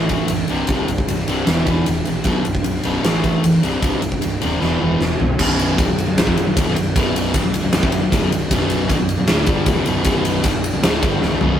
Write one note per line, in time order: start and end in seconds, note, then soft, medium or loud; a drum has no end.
0.00 0.16 A1 medium
0.00 0.10 A3 medium
0.09 0.29 A2 medium
0.09 0.29 E3 medium
0.09 0.30 A3 medium
0.09 kick medium
0.09 ride medium
0.28 0.43 B0 medium
0.28 0.48 A2 medium
0.28 0.48 E3 medium
0.28 ride medium
0.48 0.63 C1 medium
0.48 0.68 C2 medium
0.48 0.69 G2 medium
0.48 0.69 C3 medium
0.48 ride medium
0.67 0.82 C1 medium
0.67 kick loud
0.67 ride medium
0.71 0.89 C2 medium
0.71 0.89 G2 medium
0.71 0.89 C3 loud
0.88 1.02 C1 medium
0.88 1.07 C2 medium
0.88 1.07 G2 medium
0.88 ride medium
0.98 kick medium
1.08 1.22 C1 medium
1.08 1.27 C2 medium
1.08 1.27 G2 medium
1.08 ride medium
1.19 snare soft
1.28 1.41 C1 medium
1.28 1.47 C2 loud
1.28 1.47 G2 medium
1.28 1.47 C3 loud
1.28 ride medium
1.47 1.61 E1 medium
1.47 1.66 E2 medium
1.47 1.67 B2 medium
1.47 1.67 E3 medium
1.47 snare loud
1.47 ride medium
1.67 1.80 E1 medium
1.67 1.86 E2 medium
1.67 1.87 B2 medium
1.67 1.87 E3 medium
1.67 kick medium
1.67 ride medium
1.86 2.00 E1 medium
1.86 2.06 E2 medium
1.86 2.06 B2 medium
1.86 ride medium
2.05 2.21 A#1 medium
2.05 2.25 E2 medium
2.05 2.25 B2 medium
2.05 ride medium
2.24 2.39 B0 medium
2.24 2.44 B1 medium
2.24 2.44 F#2 medium
2.24 2.45 B2 medium
2.24 kick loud
2.24 ride medium
2.45 2.59 B0 medium
2.45 2.63 B1 medium
2.45 2.63 F#2 medium
2.45 ride medium
2.55 kick medium
2.64 2.78 B0 medium
2.64 2.82 B1 medium
2.64 2.82 F#2 medium
2.64 ride medium
2.76 snare soft
2.83 2.98 B0 medium
2.83 3.03 B1 loud
2.83 3.03 F#2 loud
2.83 3.04 B2 loud
2.83 ride medium
3.04 3.31 A1 medium
3.04 3.22 A2 medium
3.04 3.23 E3 loud
3.04 3.23 A3 loud
3.04 snare loud
3.04 ride medium
3.24 3.41 A2 medium
3.24 3.41 E3 medium
3.24 3.43 A3 medium
3.24 kick medium
3.24 ride medium
3.42 3.57 B0 medium
3.42 3.60 A2 medium
3.42 3.60 E3 medium
3.42 ride medium
3.62 3.77 C1 medium
3.62 3.81 C2 medium
3.62 3.81 G2 medium
3.62 3.82 C3 medium
3.62 ride medium
3.82 3.95 C1 medium
3.82 4.00 C2 medium
3.82 4.01 G2 medium
3.82 4.01 C3 medium
3.82 kick loud
3.82 ride medium
4.01 4.16 C1 medium
4.01 4.19 C2 medium
4.01 4.20 G2 medium
4.01 ride medium
4.12 kick medium
4.21 4.36 C1 medium
4.21 4.39 C2 medium
4.21 4.39 G2 medium
4.21 ride medium
4.41 4.55 D#1 medium
4.41 4.59 C2 medium
4.41 4.60 G2 loud
4.41 4.60 C3 medium
4.41 ride medium
4.61 4.75 E1 medium
4.61 4.79 E2 medium
4.61 4.79 B2 loud
4.61 4.80 E3 loud
4.61 snare medium
4.80 4.94 E1 medium
4.80 4.99 E2 medium
4.80 4.99 B2 medium
4.80 4.99 E3 medium
4.80 mid tom medium
5.00 5.13 E1 medium
5.00 5.18 E2 medium
5.00 5.18 B2 medium
5.00 snare medium
5.19 5.32 B0 medium
5.19 5.38 E2 medium
5.19 5.38 B2 medium
5.19 floor tom medium
5.39 5.76 B0 medium
5.39 5.78 B1 loud
5.39 5.78 F#2 loud
5.39 5.78 B2 loud
5.39 kick medium
5.39 crash loud
5.59 ride medium
5.78 5.87 C1 medium
5.78 5.87 C2 medium
5.78 5.88 G2 loud
5.78 kick loud
5.78 ride medium
5.89 6.07 B0 medium
5.89 6.05 B1 medium
5.89 6.04 F#2 medium
5.98 ride medium
6.08 6.17 B0 medium
6.08 6.17 B1 medium
6.08 6.17 F#2 medium
6.18 6.26 B0 medium
6.18 6.27 B1 medium
6.18 6.27 F#2 medium
6.18 snare loud
6.18 ride medium
6.26 6.36 F1 medium
6.26 6.36 F2 medium
6.26 6.36 C3 loud
6.26 kick medium
6.37 6.46 B0 medium
6.37 6.45 B1 medium
6.37 6.46 F#2 medium
6.37 ride medium
6.47 6.57 B0 medium
6.47 6.56 B1 medium
6.47 6.56 F#2 medium
6.57 6.66 D1 medium
6.57 6.66 D2 medium
6.57 6.66 A2 loud
6.57 kick loud
6.57 ride loud
6.67 6.76 B0 medium
6.67 6.76 B1 medium
6.67 6.76 F#2 loud
6.76 6.95 B0 medium
6.76 6.92 B1 medium
6.76 6.92 F#2 medium
6.76 ride medium
6.96 7.32 B0 medium
6.96 7.34 B1 medium
6.96 7.34 F#2 loud
6.96 7.35 B2 loud
6.96 kick loud
6.96 ride medium
7.16 ride medium
7.34 7.43 C1 medium
7.34 7.43 C2 medium
7.34 7.44 G2 loud
7.34 kick loud
7.34 ride medium
7.44 7.62 B0 medium
7.44 7.60 B1 medium
7.44 7.60 F#2 medium
7.54 ride medium
7.63 7.72 B0 medium
7.63 7.73 B1 medium
7.63 7.74 F#2 medium
7.73 7.82 B0 medium
7.73 7.83 B1 medium
7.73 7.84 F#2 medium
7.73 snare loud
7.73 ride loud
7.83 7.92 F1 medium
7.83 7.92 F2 medium
7.83 7.93 C3 loud
7.83 kick medium
7.92 8.01 B0 medium
7.92 8.01 B1 medium
7.92 8.02 F#2 medium
7.92 ride medium
8.02 8.12 B0 medium
8.02 8.12 B1 medium
8.02 8.13 F#2 medium
8.12 8.21 D1 medium
8.12 8.21 D2 loud
8.12 8.22 A2 loud
8.12 kick loud
8.12 ride medium
8.21 8.31 B0 medium
8.21 8.30 B1 medium
8.21 8.31 F#2 loud
8.31 8.49 B0 medium
8.31 8.47 B1 medium
8.31 8.47 F#2 medium
8.31 ride medium
8.51 8.87 B0 medium
8.51 8.89 B1 loud
8.51 8.90 F#2 loud
8.51 8.90 B2 loud
8.51 kick medium
8.51 ride medium
8.70 ride medium
8.90 8.99 C1 medium
8.90 8.99 C2 medium
8.90 8.99 G2 loud
8.90 kick loud
8.90 ride medium
8.99 9.18 B0 medium
8.99 9.15 B1 medium
8.99 9.15 F#2 medium
9.09 ride medium
9.20 9.28 B0 medium
9.20 9.29 B1 medium
9.20 9.29 F#2 medium
9.28 9.47 D1 medium
9.28 9.47 D2 loud
9.28 9.48 A2 loud
9.28 9.47 D3 loud
9.28 snare loud
9.28 ride medium
9.46 9.66 G1 loud
9.46 9.67 G2 medium
9.46 9.67 D3 medium
9.46 9.67 G3 loud
9.46 kick loud
9.46 ride medium
9.66 9.76 D1 medium
9.66 9.75 D2 loud
9.66 9.76 A2 loud
9.66 kick loud
9.66 ride medium
9.75 9.86 C1 medium
9.75 9.85 C2 medium
9.75 9.86 G2 loud
9.85 10.05 B0 medium
9.85 10.03 B1 medium
9.85 10.04 F#2 medium
9.85 10.04 B2 medium
9.85 ride medium
10.04 10.42 B0 medium
10.04 10.41 B1 loud
10.04 10.42 F#2 loud
10.04 10.44 B2 loud
10.04 kick loud
10.04 ride medium
10.25 ride medium
10.42 10.53 C1 medium
10.42 10.52 C2 medium
10.42 10.53 G2 medium
10.42 kick loud
10.42 ride medium
10.53 10.72 B0 medium
10.53 10.69 B1 medium
10.53 10.70 F#2 medium
10.64 ride medium
10.74 10.83 B0 medium
10.74 10.83 B1 medium
10.74 10.83 F#2 medium
10.83 11.02 D1 medium
10.83 11.02 D2 medium
10.83 11.03 A2 loud
10.83 11.02 D3 medium
10.83 snare loud
10.83 ride loud
11.03 11.21 G1 medium
11.03 11.22 G2 medium
11.03 11.22 D3 medium
11.03 11.23 G3 medium
11.03 kick loud
11.03 ride medium
11.22 11.31 D1 medium
11.22 11.31 D2 medium
11.22 11.32 A2 loud
11.22 snare medium
11.32 11.41 C1 loud
11.32 11.40 C2 medium
11.32 11.41 G2 loud
11.40 11.60 B0 medium
11.40 11.59 B1 medium
11.40 11.60 F#2 loud
11.40 11.60 B2 loud
11.40 floor tom medium